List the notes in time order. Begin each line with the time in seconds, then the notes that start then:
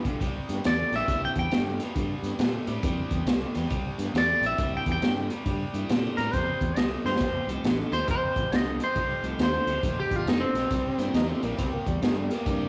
0.04 B1 G2 D3, kick, closed hi-hat
0.20 C2 C3 G3, kick, closed hi-hat
0.49 G2, snare, closed hi-hat
0.64 E2 C3 A3 D5, snare, closed hi-hat
0.92 A#1 C3 G3 A#3 C4 D4 E4, snare, closed hi-hat
0.96 E5
1.08 C2 C3 G3, kick, snare, closed hi-hat
1.25 G5
1.36 E2 G5, kick, closed hi-hat
1.51 G2 C3 A3, snare, closed hi-hat
1.80 C3 G3, snare, closed hi-hat
1.96 G2 C3 G3, kick, closed hi-hat
2.22 G2, snare, closed hi-hat
2.39 A#2 C3 A3, snare, closed hi-hat
2.66 A2 C3 G3 A#3 C4 D4 E4, closed hi-hat
2.83 F2 C3 G3, kick, closed hi-hat
3.11 E2, kick, closed hi-hat
3.26 C2 C3 A3, snare, closed hi-hat
3.54 E2 C3 G3, snare, closed hi-hat
3.69 C2 C3 G3, kick, closed hi-hat
3.98 G2, snare, closed hi-hat
4.14 E2 C3 A3 D5, snare, closed hi-hat
4.41 A#1 C3 G3 A#3 C4 D4 E4, closed hi-hat
4.46 E5
4.58 C2 C3 G3, kick, closed hi-hat
4.77 G5
4.86 E2, kick, closed hi-hat
4.92 G5
5.01 G2 C3 G3 A3 A#3 C4 D4 E4, snare, closed hi-hat
5.30 C3 G3, closed hi-hat
5.45 G2 C3 G3, kick, closed hi-hat
5.73 G2 G3 A#3 C4 D4 E4, closed hi-hat
5.89 A#2 C3 A3, snare, closed hi-hat
6.17 A2 C3 G3 A#4, snare, closed hi-hat
6.33 F2 C3 G3 C5, kick, snare, closed hi-hat
6.61 E2, kick, closed hi-hat
6.76 C2 C3 A3 D#5, snare, closed hi-hat
7.05 G2 C3 G3 C5, snare
7.16 snare
7.20 F1 F2 C3, kick, closed hi-hat
7.47 C2 G3 A3 C4 D#4 F4, closed hi-hat
7.64 A1 F2 D3, snare, closed hi-hat
7.91 D#2 F2 C3 C5, snare, closed hi-hat
8.08 F1 F2 C3 C5, kick, closed hi-hat
8.36 A1, kick, closed hi-hat
8.51 C2 F2 D3, snare, closed hi-hat
8.55 D#5
8.80 F2 C3, closed hi-hat
8.84 C5
8.96 C2 F2 C3, kick, closed hi-hat
9.22 C2 G3 A3 C4 D#4 F4, closed hi-hat
9.38 D#2 F2 D3, snare, closed hi-hat
9.43 C5
9.66 D2 F2 C3, closed hi-hat
9.83 A#1 F2 C3, kick, closed hi-hat
10.00 G4
10.11 A1, kick, closed hi-hat
10.16 F4
10.26 F1 F2 D3 D#4, snare, closed hi-hat
10.40 C4
10.54 B1 F2 C3, snare, closed hi-hat
10.71 C2 C3 G3, kick, closed hi-hat
10.97 G2 G3 A#3 C4 D4 E4, snare, closed hi-hat
11.14 E2 C3 A3 D#4, snare, closed hi-hat
11.29 C4
11.42 A#1 C3 G3 A#3, closed hi-hat
11.57 C2 C3 G3 C4, kick, snare, closed hi-hat
11.73 A#3
11.87 E2 G3, kick, closed hi-hat
12.02 G2 C3 D#3 A3, snare, closed hi-hat
12.17 G3
12.31 C3 G3 A#3, snare, closed hi-hat
12.46 G2 C3 G3 A#3 C4 D4 E4, kick, closed hi-hat